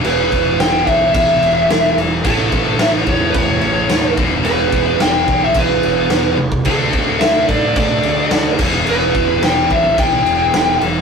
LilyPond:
<<
  \new Staff \with { instrumentName = "Lead electric guitar" } { \time 4/4 \key d \major \tempo 4 = 109 b'4 g''8 e''8 e''4. r8 | a'4 e''8 cis''16. b'32 cis''4. r8 | b'4 g''8. e''16 b'4. r8 | a'4 e''8 d''8 d''4. r8 |
b'4 g''8 e''8 g''4. r8 | }
  \new Staff \with { instrumentName = "Tonewheel organ" } { \time 4/4 \key d \major <e b fis'>1 | <a e' b'>2.~ <a e' b'>8 <e fis b>8~ | <e fis b>1 | <d' a' e''>2.~ <d' a' e''>8 <e fis b>8~ |
<e fis b>1 | }
  \new Staff \with { instrumentName = "Distorted electric guitar" } { \clef bass \time 4/4 \key d \major <e, b, e>2.~ <e, b, e>8 r8 | <a, e a>2.~ <a, e a>8 <e, b, e>8~ | <e, b, e>2.~ <e, b, e>8 r8 | <d a d'>2.~ <d a d'>8 <e, b, e>8~ |
<e, b, e>2.~ <e, b, e>8 r8 | }
  \new Staff \with { instrumentName = "Overdriven electric guitar" } { \clef bass \time 4/4 \key d \major <e, b, e>2.~ <e, b, e>8 r8 | <a, e a>2.~ <a, e a>8 <e, b, e>8~ | <e, b, e>2.~ <e, b, e>8 r8 | <d a d'>2.~ <d a d'>8 <e, b, e>8~ |
<e, b, e>2.~ <e, b, e>8 r8 | }
  \new Staff \with { instrumentName = "Picked electric bass" } { \clef bass \time 4/4 \key d \major e,,8 e,,8 e,,8 b,,8 b,,8 e,,8 e,,8 e,,8 | a,,8 a,,8 a,,8 e,8 e,8 a,,8 dis,8 e,,8 | e,,8 e,,8 e,,8 b,,8 b,,8 e,,8 e,,8 e,,8 | d,8 d,8 d,8 a,8 a,8 d,8 d,8 e,,8 |
e,,8 e,,8 e,,8 b,,8 b,,8 e,,8 e,,8 e,,8 | }
  \new DrumStaff \with { instrumentName = "Drums" } \drummode { \time 4/4 cymc8 <cymc bd>8 <cymc sn>8 <cymc bd>8 <cymc bd>8 cymc8 <cymc sn>8 cymc8 | <cymc bd>8 <cymc bd>8 <cymc sn>8 <cymc bd>8 <cymc bd>8 cymc8 <cymc sn>8 <cymc bd>8 | cymc8 <cymc bd>8 <cymc sn>8 <cymc bd>8 <cymc bd>8 cymc8 <cymc sn>8 tommh16 bd16 | <cymc bd>8 <cymc bd>8 <cymc sn>8 <cymc bd>8 <cymc bd>8 cymc8 <cymc sn>8 <cymc bd>8 |
cymc8 <cymc bd>8 <cymc sn>8 <cymc bd>8 <cymc bd>8 cymc8 <cymc sn>8 cymc8 | }
>>